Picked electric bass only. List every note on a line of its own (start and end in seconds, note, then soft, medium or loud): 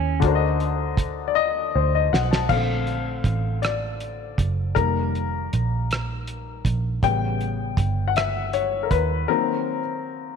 0.00 0.19 D#2 medium
0.23 1.70 D2 loud
1.76 2.09 D2 medium
2.13 2.46 B1 medium
2.50 3.21 A#1 medium
3.25 4.34 A1 medium
4.39 4.72 F#1 medium
4.77 5.48 F1 medium
5.53 6.62 A#1 medium
6.66 6.99 A#1 medium
7.04 7.74 A1 medium
7.78 8.87 G1 medium
8.92 9.25 D#2 medium